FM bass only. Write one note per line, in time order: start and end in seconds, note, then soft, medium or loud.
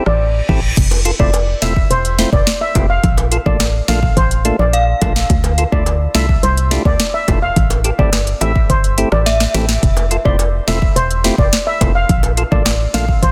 0.07 0.42 A1 medium
0.49 0.72 A1 medium
0.77 1.12 F1 loud
1.20 1.55 F1 loud
1.62 1.86 E1 medium
1.90 2.26 E1 loud
2.33 2.44 F1 medium
2.75 2.99 F1 loud
3.04 3.39 A#1 loud
3.46 3.81 A1 loud
3.89 4.12 A#1 loud
4.17 4.52 A1 loud
4.59 4.94 A#1 medium
5.02 5.25 A#1 loud
5.30 5.65 D2 loud
5.72 6.08 D2 loud
6.15 6.38 C2 medium
6.43 6.78 C2 loud
6.85 6.97 D2 medium
7.28 7.52 E1 medium
7.56 7.92 A1 loud
7.99 8.34 G1 loud
8.41 8.65 A1 medium
8.70 9.05 G1 loud
9.12 9.47 A1 medium
9.54 9.78 A1 loud
9.83 10.18 F1 loud
10.25 10.61 F1 loud
10.68 10.91 E1 medium
10.96 11.31 E1 loud
11.38 11.50 F1 medium
11.81 12.04 F1 loud
12.09 12.44 A#1 loud
12.52 12.87 A1 loud
12.94 13.18 A#1 loud
13.22 13.32 A1 loud